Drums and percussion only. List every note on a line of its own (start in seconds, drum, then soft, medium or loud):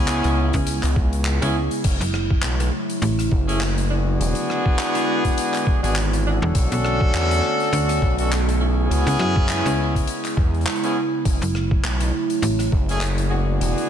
0.07 clap loud
0.07 closed hi-hat medium
0.23 cross-stick soft
0.23 closed hi-hat medium
0.53 kick medium
0.53 closed hi-hat medium
0.67 closed hi-hat loud
0.83 clap soft
0.83 closed hi-hat medium
0.96 kick loud
1.13 closed hi-hat medium
1.25 clap loud
1.25 closed hi-hat medium
1.42 closed hi-hat medium
1.71 closed hi-hat medium
1.84 kick loud
1.84 closed hi-hat medium
1.84 crash medium
2.01 closed hi-hat medium
2.14 cross-stick medium
2.31 kick loud
2.42 clap loud
2.42 closed hi-hat medium
2.60 cross-stick soft
2.60 closed hi-hat medium
2.90 closed hi-hat medium
3.02 closed hi-hat medium
3.19 cross-stick soft
3.19 closed hi-hat medium
3.32 kick loud
3.49 closed hi-hat soft
3.61 clap loud
3.61 closed hi-hat medium
3.78 closed hi-hat medium
4.21 closed hi-hat medium
4.35 closed hi-hat medium
4.50 cross-stick medium
4.66 kick loud
4.79 clap loud
4.79 closed hi-hat loud
4.95 cross-stick soft
4.95 closed hi-hat medium
5.25 kick medium
5.25 closed hi-hat medium
5.38 closed hi-hat loud
5.54 clap soft
5.54 closed hi-hat medium
5.67 kick loud
5.84 closed hi-hat medium
5.96 clap loud
5.96 closed hi-hat loud
6.13 closed hi-hat medium
6.55 kick loud
6.55 closed hi-hat loud
6.72 closed hi-hat medium
6.85 cross-stick medium
7.01 kick loud
7.14 clap loud
7.14 closed hi-hat medium
7.31 cross-stick soft
7.31 closed hi-hat medium
7.60 closed hi-hat soft
7.73 closed hi-hat medium
7.89 cross-stick soft
7.89 closed hi-hat medium
8.02 kick loud
8.18 closed hi-hat medium
8.32 clap loud
8.32 closed hi-hat loud
8.49 closed hi-hat medium
8.91 closed hi-hat medium
9.08 closed hi-hat medium
9.20 cross-stick medium
9.36 kick loud
9.49 clap loud
9.49 closed hi-hat medium
9.66 cross-stick soft
9.66 closed hi-hat medium
9.95 kick medium
9.95 closed hi-hat medium
10.07 closed hi-hat medium
10.25 clap soft
10.25 closed hi-hat medium
10.37 kick loud
10.54 closed hi-hat soft
10.61 closed hi-hat soft
10.66 clap loud
10.66 closed hi-hat medium
10.66 closed hi-hat soft
10.76 closed hi-hat soft
10.84 closed hi-hat medium
11.25 kick loud
11.25 closed hi-hat medium
11.42 closed hi-hat medium
11.55 cross-stick soft
11.71 kick loud
11.84 clap loud
11.84 closed hi-hat medium
12.00 cross-stick soft
12.00 closed hi-hat medium
12.30 closed hi-hat medium
12.43 closed hi-hat medium
12.59 cross-stick soft
12.59 closed hi-hat medium
12.72 kick loud
12.89 closed hi-hat medium
13.01 clap loud
13.01 closed hi-hat medium
13.18 closed hi-hat medium
13.61 closed hi-hat medium
13.78 closed hi-hat medium